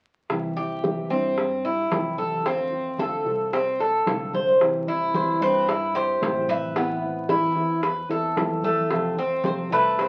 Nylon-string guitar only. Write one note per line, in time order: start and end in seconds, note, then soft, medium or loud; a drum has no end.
0.29 0.55 C3 medium
0.29 0.56 E3 medium
0.29 0.56 G3 medium
0.29 0.56 C4 medium
0.29 0.55 E4 medium
0.56 0.83 G3 soft
0.56 0.83 C4 soft
0.56 0.82 E4 soft
0.84 1.10 C3 medium
0.84 1.10 E3 medium
0.84 1.10 G3 medium
0.84 1.10 C4 medium
0.84 1.09 E4 medium
1.10 1.37 G3 soft
1.10 1.37 C4 soft
1.10 1.36 E4 soft
1.38 muted nylon-string guitar stroke medium
1.65 1.91 G3 soft
1.65 1.91 C4 soft
1.65 1.90 E4 soft
1.91 2.44 C3 medium
1.91 2.44 E3 medium
1.91 2.45 G3 medium
1.91 2.45 C4 medium
1.91 2.45 E4 medium
2.45 2.71 D3 medium
2.45 2.71 A3 medium
2.45 2.72 C4 medium
2.45 2.71 F4 medium
2.72 2.99 A3 soft
2.72 2.99 C4 soft
2.72 2.98 F4 soft
2.99 3.25 D3 medium
2.99 3.25 A3 medium
2.99 3.26 C4 medium
2.99 3.25 F4 medium
3.26 3.52 A3 soft
3.26 3.52 C4 soft
3.26 3.52 F4 soft
3.53 muted nylon-string guitar stroke medium
3.79 4.06 A3 soft
3.79 4.06 C4 soft
3.79 4.05 F4 soft
4.07 4.59 D3 medium
4.07 4.60 A3 medium
4.07 4.60 C4 medium
4.07 4.60 F4 medium
4.60 4.86 C3 medium
4.60 4.86 E3 medium
4.60 4.87 G3 medium
4.60 4.87 C4 medium
4.60 4.86 E4 medium
4.87 5.14 G3 soft
4.87 5.14 C4 soft
4.87 5.13 E4 soft
5.14 5.40 C3 medium
5.14 5.40 E3 medium
5.14 5.41 G3 medium
5.14 5.41 C4 medium
5.14 5.40 E4 medium
5.41 5.67 G3 soft
5.41 5.67 C4 soft
5.41 5.67 E4 soft
5.68 muted nylon-string guitar stroke medium
5.94 6.20 G3 soft
5.94 6.21 C4 soft
5.94 6.20 E4 soft
6.20 6.74 C3 medium
6.20 6.73 E3 medium
6.20 6.75 G3 medium
6.20 6.75 C4 medium
6.20 6.75 E4 medium
6.75 7.01 E3 medium
6.75 7.01 B3 medium
6.75 7.02 C4 medium
6.75 7.01 E4 medium
7.02 7.29 B3 soft
7.02 7.29 C4 soft
7.02 7.28 E4 soft
7.29 7.55 E3 medium
7.29 7.56 B3 medium
7.29 7.55 C4 medium
7.29 7.54 E4 medium
7.55 7.82 B3 soft
7.55 7.82 C4 soft
7.55 7.82 E4 soft
7.82 muted nylon-string guitar stroke medium
8.09 8.36 B3 soft
8.09 8.36 C4 soft
8.09 8.36 E4 medium
8.36 8.89 E3 medium
8.36 8.90 B3 medium
8.36 8.90 C4 medium
8.36 8.90 E4 medium
8.89 9.16 C3 medium
8.89 9.17 F3 medium
8.89 9.17 A3 medium
8.89 9.17 C4 medium
8.89 9.15 F4 medium
9.17 9.44 A3 soft
9.17 9.44 C4 soft
9.17 9.43 F4 medium
9.43 9.70 C3 medium
9.43 9.70 F3 medium
9.43 9.71 A3 medium
9.43 9.70 C4 medium
9.43 9.69 F4 medium
9.70 9.97 A3 soft
9.70 9.98 C4 soft
9.70 9.97 F4 soft
9.98 muted nylon-string guitar stroke medium